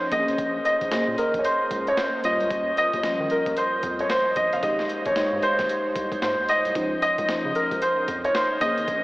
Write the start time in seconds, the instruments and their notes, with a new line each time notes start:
Already playing: fm electric piano F3 C#4 D#4 C5, grand piano C5
0.12 analog synth bass A#1, fm electric piano A#3 C#4 G#4 C5, grand piano D#5, kick, closed hi-hat
0.28 analog synth bass G#1, closed hi-hat
0.38 analog synth bass A#1, kick, closed hi-hat
0.65 grand piano D#5, closed hi-hat
0.81 analog synth bass A#1, kick, closed hi-hat
0.91 analog synth bass A#2, fm electric piano A#3 C#4 G#4 C5, snare, closed hi-hat
1.08 analog synth bass A#2
1.18 grand piano A#4, closed hi-hat
1.34 analog synth bass A#1, kick, closed hi-hat
1.39 grand piano C#5
1.45 grand piano C5, closed hi-hat
1.71 analog synth bass C#2, kick, closed hi-hat
1.87 grand piano C#5, closed hi-hat
1.97 grand piano C5, snare, closed hi-hat
2.24 analog synth bass D#2, fm electric piano G3 C#4 F4 C5, grand piano D#5, closed hi-hat
2.40 analog synth bass C#2, closed hi-hat
2.51 analog synth bass D#2, kick, closed hi-hat
2.77 grand piano D#5, closed hi-hat
2.93 analog synth bass D#2, kick, closed hi-hat
3.03 analog synth bass D#3, fm electric piano F3 C#4 F4 C5, snare, closed hi-hat
3.10 fm electric piano G3
3.20 analog synth bass D#3
3.30 grand piano A#4, closed hi-hat
3.46 analog synth bass D#2, kick, closed hi-hat
3.57 grand piano C5, closed hi-hat
3.83 analog synth bass F2, kick, closed hi-hat
3.99 grand piano C#5, closed hi-hat
4.10 grand piano C5, snare, closed hi-hat
4.36 analog synth bass A#1, grand piano D#5, kick, closed hi-hat
4.53 analog synth bass G1, grand piano F5, closed hi-hat
4.63 analog synth bass G#1, fm electric piano G#3 D#4 G4 C5, grand piano D#5, kick, closed hi-hat
4.79 snare
4.89 closed hi-hat
5.05 analog synth bass G#1, grand piano C#5, kick, closed hi-hat
5.16 analog synth bass G#2, fm electric piano G#3 D#4 G4 C5, snare, closed hi-hat
5.33 analog synth bass G#2
5.43 grand piano C5, closed hi-hat
5.59 analog synth bass G#1, kick, snare, closed hi-hat
5.69 closed hi-hat
5.96 analog synth bass C2, kick, closed hi-hat
6.12 kick, closed hi-hat
6.22 analog synth bass G#2, grand piano C5, snare, closed hi-hat
6.39 analog synth bass D#2
6.49 grand piano D#5, closed hi-hat
6.65 analog synth bass C2, closed hi-hat
6.75 analog synth bass C#2, fm electric piano F3 C#4 D#4 C5, kick, closed hi-hat
7.02 grand piano D#5, closed hi-hat
7.18 analog synth bass C#2, kick, closed hi-hat
7.28 analog synth bass C#3, fm electric piano F3 C#4 D#4 C5, snare, closed hi-hat
7.45 analog synth bass C#3
7.55 grand piano A#4, closed hi-hat
7.71 analog synth bass C#2, kick, closed hi-hat
7.82 grand piano C5, closed hi-hat
8.08 analog synth bass F2, kick, closed hi-hat
8.24 grand piano C#5, closed hi-hat
8.35 grand piano C5, snare, closed hi-hat
8.61 analog synth bass A#1, fm electric piano A#3 C#4 G#4 C5, grand piano D#5, kick, closed hi-hat
8.78 analog synth bass G#1, closed hi-hat
8.88 analog synth bass A#1, kick, closed hi-hat